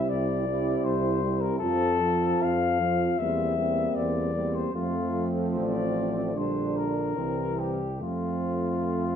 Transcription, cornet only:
Already playing: E5
0.09 D5
0.84 C5
1.41 A#4
1.59 A4
2.43 F5
3.18 E5
3.95 D5
4.54 C5
4.74 F4
5.57 D5
6.37 C5
6.76 A#4
7.59 G4
8.02 F4

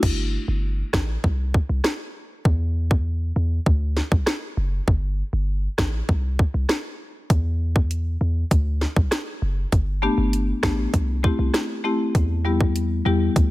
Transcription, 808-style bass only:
0.03 G1
0.48 G1
0.94 A1
1.24 C2
1.69 C2
2.45 E2
3.36 E2
3.66 D2
4.12 C2
4.57 F#1
4.88 G1
5.33 G1
5.78 A1
6.09 C2
6.54 C2
7.30 E2
8.21 E2
8.51 D2
8.96 C2
9.42 F#1
9.72 G1
10.18 G1
10.63 A1
10.94 C2
11.39 C2
12.15 E2
13.06 E2
13.36 D2

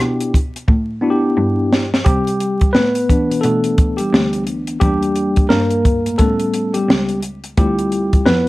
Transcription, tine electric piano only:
Already playing: B3 D4 E4 G4
1.01 B3 D4 E4 F#4
1.10 G4
2.05 G3 G4
2.73 B3 B4
3.09 E3 B3 D4
3.41 A3 A4
3.97 G3 G4
4.80 G3 A#3 D4 G4
5.49 A#3 A#4
6.18 G3 A3 B3 C#4 A4
6.74 G3 G4
7.57 G3 C4 E4 F4 G4
8.26 B3 B4

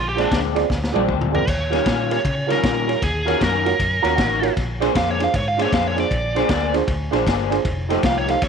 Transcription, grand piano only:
0.15 F4 G#4 C5 D5
0.55 F4 G#4 C5 D5
0.92 F4 G#4 C5 D5
1.31 F4 G#4 C5 D5
1.70 F4 G4 A#4 C#5
2.10 F4 G4 A#4 C#5
2.47 F4 G4 A#4 C#5
2.87 F4 G4 A#4 C#5
3.25 F4 F#4 A#4 C#5
3.65 F4 F#4 A#4 C#5
4.02 F4 F#4 A#4 C#5 A#5
4.16 F#5
4.42 F4 F#4 A#4 C#5
4.80 D4 F4 G#4 C5
5.19 D4 F4 G#4 C5
5.57 D4 F4 G#4 C5
5.95 D4 F4 G#4 C5
6.35 D4 F4 G#4 C5
6.72 D4 F4 G#4 C5
7.11 D4 F4 G#4 C5
7.50 D4 F4 G#4 C5
7.89 D#4 G4 A4 C5
8.27 D#4 G4 A4 C5

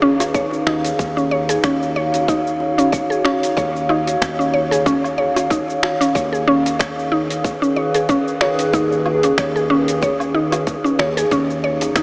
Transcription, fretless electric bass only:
Already playing: D#2
0.67 D#2
0.99 D#2
1.64 D#2
3.57 D#2
4.21 D#2
6.15 D#2
8.73 D#2
9.38 D#2
10.99 D#2
11.31 D#2
11.96 D#2

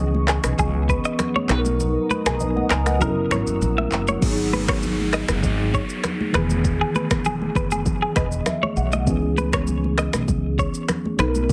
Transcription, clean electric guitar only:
0.29 G#4
0.59 G#4
0.90 B4
1.05 D#5
1.36 C#5
1.50 B4
2.11 B4
2.27 G#4
2.72 A#4
3.02 A#4
3.32 C#5
3.78 E5
4.09 C#5
4.53 B4
4.69 C#5
5.14 D#5
5.75 C#5
6.35 B4
6.81 G#4
6.96 B4
7.26 G#4
7.56 B4
7.72 G#4
8.02 G#4
8.17 B4
8.63 C#5
8.93 D#5
9.38 B4
9.54 C#5
9.99 D#5
10.59 C#5
11.20 B4

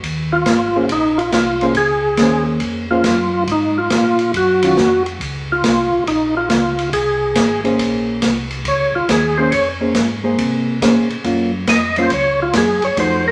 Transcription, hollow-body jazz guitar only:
0.76 A#3 C#4 G#4 C5
1.62 A#3 C#4 G#4 C5
2.20 A#3 C#4 G#4 C5
2.91 A#3 C#4 G#4 C5
4.63 D#3 F#3 C#4 F4
7.64 A#3 C#4 G#4 C5
9.38 A#3 C#4 G#4 C5
9.81 A#3 C#4 G#4 C5
10.24 A#3 G#4 C5
10.81 A#3 C#4 G#4 C5
11.24 F#3 A#3 C#4 F4
11.97 F#3 A#3 C#4 F4
12.97 F3 A3 D#4 F#4

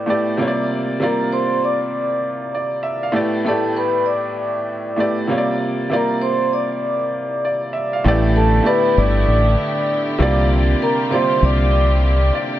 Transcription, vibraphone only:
Already playing: D5 D6
1.02 A#4 A#5
1.32 C5 C6
1.64 D5 D6
3.46 A4 A5
3.77 B4 B5
4.06 D5 D6
5.95 A#4 A#5
6.22 C5 C6
6.53 D5 D6
8.36 A4 A5
8.66 B4 B5
8.97 D5 D6
10.82 A#4 A#5
11.12 C5 C6
11.45 D5 D6

